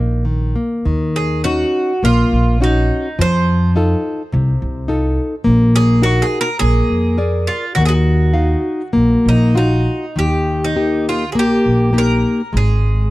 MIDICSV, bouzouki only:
0, 0, Header, 1, 2, 480
1, 0, Start_track
1, 0, Key_signature, -6, "minor"
1, 0, Tempo, 592300
1, 694, Time_signature, 4, 2, 24, 8
1, 2120, Tempo, 573614
1, 6920, Tempo, 605449
1, 8840, Tempo, 587084
1, 10745, End_track
2, 0, Start_track
2, 0, Title_t, "Bouzouki"
2, 0, Program_c, 0, 25
2, 0, Note_on_c, 0, 63, 64
2, 186, Note_off_c, 0, 63, 0
2, 940, Note_on_c, 0, 68, 74
2, 1158, Note_off_c, 0, 68, 0
2, 1167, Note_on_c, 0, 66, 77
2, 1656, Note_off_c, 0, 66, 0
2, 1659, Note_on_c, 0, 65, 76
2, 2093, Note_off_c, 0, 65, 0
2, 2136, Note_on_c, 0, 63, 63
2, 2620, Note_on_c, 0, 72, 89
2, 2624, Note_off_c, 0, 63, 0
2, 3054, Note_off_c, 0, 72, 0
2, 4747, Note_on_c, 0, 68, 94
2, 4967, Note_off_c, 0, 68, 0
2, 4980, Note_on_c, 0, 66, 87
2, 5137, Note_on_c, 0, 68, 77
2, 5145, Note_off_c, 0, 66, 0
2, 5287, Note_off_c, 0, 68, 0
2, 5293, Note_on_c, 0, 70, 91
2, 5445, Note_off_c, 0, 70, 0
2, 5448, Note_on_c, 0, 68, 81
2, 6184, Note_on_c, 0, 65, 65
2, 6203, Note_off_c, 0, 68, 0
2, 6412, Note_off_c, 0, 65, 0
2, 6415, Note_on_c, 0, 66, 73
2, 6476, Note_off_c, 0, 66, 0
2, 6504, Note_on_c, 0, 68, 67
2, 6529, Note_on_c, 0, 66, 69
2, 6554, Note_off_c, 0, 68, 0
2, 7660, Note_on_c, 0, 63, 61
2, 7835, Note_off_c, 0, 66, 0
2, 7874, Note_off_c, 0, 63, 0
2, 7889, Note_on_c, 0, 63, 65
2, 8371, Note_off_c, 0, 63, 0
2, 8374, Note_on_c, 0, 67, 72
2, 8736, Note_off_c, 0, 67, 0
2, 8738, Note_on_c, 0, 63, 62
2, 9066, Note_off_c, 0, 63, 0
2, 9097, Note_on_c, 0, 65, 67
2, 9278, Note_off_c, 0, 65, 0
2, 9288, Note_on_c, 0, 68, 53
2, 9333, Note_off_c, 0, 68, 0
2, 9345, Note_on_c, 0, 67, 83
2, 9824, Note_off_c, 0, 67, 0
2, 9827, Note_on_c, 0, 70, 83
2, 10305, Note_off_c, 0, 70, 0
2, 10308, Note_on_c, 0, 68, 70
2, 10745, Note_off_c, 0, 68, 0
2, 10745, End_track
0, 0, End_of_file